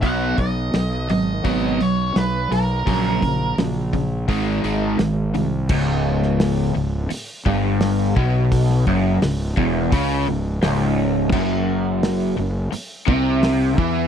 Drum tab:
CC |----------------|----------------|x---------------|----------------|
HH |o-o-o-o-o-o-o-o-|o-o-o-o-o-o-o-o-|----o---o---o---|o---o---o---o---|
SD |----o-------o---|----o-------o---|---oo-------o---|-o--o-------o---|
BD |o-o-----o-------|o-o---o-o-------|o---------o---o-|o-o---o-o-------|

CC |x---------------|
HH |----o---o---o---|
SD |----o-------o---|
BD |o---------o---o-|